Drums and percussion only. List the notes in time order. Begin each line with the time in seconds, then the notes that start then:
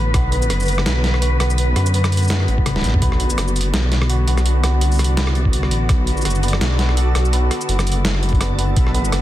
0.14 kick, cross-stick, closed hi-hat
0.32 closed hi-hat
0.42 shaker
0.50 cross-stick, closed hi-hat
0.60 shaker
0.62 shaker
0.65 closed hi-hat, shaker
0.68 shaker
0.74 cross-stick, shaker
0.86 snare, closed hi-hat
1.04 snare, closed hi-hat
1.14 cross-stick
1.22 closed hi-hat
1.40 cross-stick, closed hi-hat
1.50 shaker
1.58 closed hi-hat
1.76 cross-stick, closed hi-hat
1.86 shaker
1.94 closed hi-hat
2.04 cross-stick, shaker
2.12 closed hi-hat, shaker
2.16 closed hi-hat, shaker
2.18 shaker
2.22 shaker
2.24 shaker
2.28 snare, closed hi-hat, shaker
2.40 cross-stick
2.48 closed hi-hat
2.58 kick
2.66 cross-stick, closed hi-hat, high tom
2.76 snare
2.81 snare, closed hi-hat
2.87 snare
2.94 mid tom
3.02 kick, closed hi-hat
3.12 cross-stick
3.20 closed hi-hat
3.30 shaker
3.38 cross-stick, closed hi-hat
3.48 shaker
3.56 closed hi-hat, shaker
3.61 closed hi-hat
3.74 cross-stick, snare, closed hi-hat
3.92 snare, closed hi-hat
4.02 cross-stick
4.10 closed hi-hat
4.28 closed hi-hat
4.38 cross-stick, shaker
4.46 closed hi-hat
4.64 cross-stick, closed hi-hat
4.81 closed hi-hat
4.91 shaker
4.93 shaker
4.95 cross-stick, closed hi-hat, shaker
4.99 shaker
5.04 closed hi-hat
5.17 snare, closed hi-hat
5.27 cross-stick
5.35 closed hi-hat
5.45 kick
5.53 closed hi-hat
5.63 cross-stick
5.71 closed hi-hat
5.89 kick, cross-stick, closed hi-hat
6.07 closed hi-hat
6.17 shaker
6.21 cross-stick, closed hi-hat, shaker
6.25 shaker
6.30 shaker
6.35 shaker
6.43 closed hi-hat, shaker
6.48 closed hi-hat
6.53 cross-stick
6.61 snare, closed hi-hat
6.79 snare, closed hi-hat
6.89 cross-stick
6.97 closed hi-hat
7.15 cross-stick, closed hi-hat
7.25 shaker
7.33 closed hi-hat
7.51 cross-stick, closed hi-hat
7.61 shaker
7.69 closed hi-hat
7.79 cross-stick, shaker
7.87 closed hi-hat, shaker
7.92 closed hi-hat
8.05 snare, closed hi-hat
8.15 cross-stick
8.23 closed hi-hat
8.29 kick, closed hi-hat
8.35 closed hi-hat
8.41 cross-stick, closed hi-hat
8.59 closed hi-hat
8.76 kick, closed hi-hat
8.87 cross-stick
8.95 closed hi-hat
9.05 shaker
9.12 cross-stick, closed hi-hat